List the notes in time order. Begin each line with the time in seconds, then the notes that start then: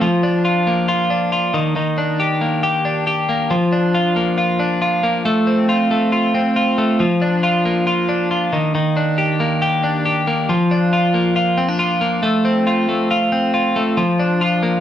0.01 F3
0.23 D4
0.45 F4
0.67 A#3
0.88 F4
1.10 D4
1.32 F4
1.54 D#3
1.76 D#3
1.98 D4
2.20 G4
2.41 A#3
2.63 G4
2.85 D4
3.07 G4
3.29 A#3
3.51 F3
3.72 D4
3.95 F4
4.16 A#3
4.38 F4
4.60 D4
4.82 F4
5.03 A#3
5.25 A3
5.47 C4
5.69 F4
5.91 A3
6.12 F4
6.35 C4
6.56 F4
6.78 A3
7.00 F3
7.22 D4
7.43 F4
7.65 A#3
7.87 F4
8.09 D4
8.31 F4
8.53 D#3
8.75 D#3
8.97 D4
9.18 G4
9.40 A#3
9.62 G4
9.84 D4
10.05 G4
10.27 A#3
10.49 F3
10.71 D4
10.93 F4
11.14 A#3
11.36 F4
11.58 C4
11.69 D4
11.79 F4
12.01 A#3
12.23 A3
12.45 C4
12.67 F4
12.89 A3
13.11 F4
13.32 C4
13.54 F4
13.76 A3
13.97 F3
14.20 D4
14.41 F4
14.63 A#3